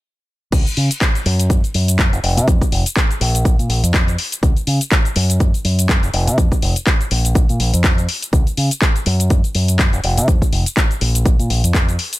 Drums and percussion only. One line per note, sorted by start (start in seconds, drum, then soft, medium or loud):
0.52 kick loud
0.52 closed hi-hat medium
0.52 crash loud
0.52 shaker medium
0.66 closed hi-hat soft
0.66 shaker soft
0.77 open hi-hat loud
0.91 closed hi-hat medium
0.91 shaker medium
1.01 kick loud
1.01 clap loud
1.01 closed hi-hat medium
1.01 shaker medium
1.15 closed hi-hat soft
1.15 shaker soft
1.26 open hi-hat loud
1.40 closed hi-hat medium
1.40 shaker medium
1.50 kick loud
1.50 closed hi-hat medium
1.50 shaker medium
1.64 closed hi-hat soft
1.64 shaker soft
1.74 open hi-hat loud
1.88 closed hi-hat medium
1.88 shaker medium
1.99 kick loud
1.99 clap loud
1.99 closed hi-hat medium
1.99 shaker medium
2.13 closed hi-hat soft
2.13 shaker soft
2.24 open hi-hat loud
2.37 closed hi-hat medium
2.37 shaker medium
2.48 kick loud
2.48 closed hi-hat medium
2.48 shaker medium
2.61 kick medium
2.61 closed hi-hat soft
2.61 shaker soft
2.72 open hi-hat loud
2.86 closed hi-hat medium
2.86 shaker medium
2.96 kick loud
2.96 clap loud
2.96 closed hi-hat medium
2.96 shaker medium
3.11 closed hi-hat soft
3.11 shaker soft
3.21 open hi-hat loud
3.35 closed hi-hat medium
3.35 shaker medium
3.45 kick loud
3.45 closed hi-hat medium
3.45 shaker medium
3.59 closed hi-hat soft
3.59 shaker soft
3.70 open hi-hat loud
3.84 closed hi-hat medium
3.84 shaker medium
3.94 kick loud
3.94 clap loud
3.94 closed hi-hat medium
3.94 shaker medium
4.08 closed hi-hat soft
4.08 shaker soft
4.18 open hi-hat loud
4.32 closed hi-hat medium
4.32 shaker medium
4.43 kick loud
4.43 closed hi-hat medium
4.43 shaker medium
4.57 closed hi-hat soft
4.57 shaker soft
4.67 open hi-hat loud
4.81 closed hi-hat medium
4.81 shaker medium
4.92 kick loud
4.92 clap loud
4.92 closed hi-hat medium
4.92 shaker medium
5.05 closed hi-hat soft
5.05 shaker soft
5.16 open hi-hat loud
5.30 closed hi-hat medium
5.30 shaker medium
5.40 kick loud
5.40 closed hi-hat medium
5.40 shaker medium
5.54 closed hi-hat soft
5.54 shaker soft
5.65 open hi-hat loud
5.79 closed hi-hat medium
5.79 shaker medium
5.89 kick loud
5.89 clap loud
5.89 closed hi-hat medium
5.89 shaker medium
6.03 closed hi-hat soft
6.03 shaker soft
6.14 open hi-hat loud
6.27 closed hi-hat medium
6.27 shaker medium
6.38 kick loud
6.38 closed hi-hat medium
6.38 shaker medium
6.52 kick medium
6.52 closed hi-hat soft
6.52 shaker soft
6.62 open hi-hat loud
6.76 closed hi-hat soft
6.76 shaker medium
6.87 kick loud
6.87 clap loud
6.87 closed hi-hat medium
6.87 shaker medium
7.01 closed hi-hat soft
7.01 shaker soft
7.11 open hi-hat loud
7.25 closed hi-hat medium
7.25 shaker medium
7.35 kick loud
7.35 closed hi-hat medium
7.35 shaker medium
7.49 closed hi-hat soft
7.49 shaker soft
7.60 open hi-hat loud
7.74 closed hi-hat medium
7.74 shaker medium
7.84 kick loud
7.84 clap loud
7.84 closed hi-hat medium
7.84 shaker medium
7.98 closed hi-hat soft
7.98 shaker soft
8.09 open hi-hat loud
8.22 closed hi-hat medium
8.22 shaker medium
8.33 kick loud
8.33 closed hi-hat medium
8.33 shaker medium
8.47 closed hi-hat soft
8.47 shaker soft
8.57 open hi-hat loud
8.71 closed hi-hat medium
8.71 shaker medium
8.82 kick loud
8.82 clap loud
8.82 closed hi-hat medium
8.82 shaker medium
8.96 closed hi-hat soft
8.96 shaker soft
9.06 open hi-hat loud
9.20 closed hi-hat medium
9.20 shaker medium
9.30 kick loud
9.30 closed hi-hat medium
9.30 shaker medium
9.44 closed hi-hat soft
9.44 shaker soft
9.55 open hi-hat loud
9.68 closed hi-hat medium
9.68 shaker medium
9.79 kick loud
9.79 clap loud
9.79 closed hi-hat medium
9.79 shaker medium
9.93 closed hi-hat soft
9.93 shaker soft
10.04 open hi-hat loud
10.17 closed hi-hat medium
10.17 shaker medium
10.28 kick loud
10.28 closed hi-hat medium
10.28 shaker medium
10.42 kick medium
10.42 closed hi-hat soft
10.42 shaker soft
10.53 open hi-hat loud
10.66 closed hi-hat medium
10.66 shaker medium
10.77 kick loud
10.77 clap loud
10.77 closed hi-hat medium
10.77 shaker medium
10.91 closed hi-hat soft
10.91 shaker soft
11.01 open hi-hat loud
11.15 closed hi-hat medium
11.15 shaker medium
11.26 kick loud
11.26 closed hi-hat medium
11.26 shaker medium
11.39 closed hi-hat soft
11.39 shaker soft
11.50 open hi-hat loud
11.64 closed hi-hat medium
11.64 shaker medium
11.74 kick loud
11.74 clap loud
11.74 closed hi-hat medium
11.74 shaker medium
11.89 closed hi-hat soft
11.89 shaker soft
11.99 open hi-hat loud
12.13 closed hi-hat medium
12.13 shaker medium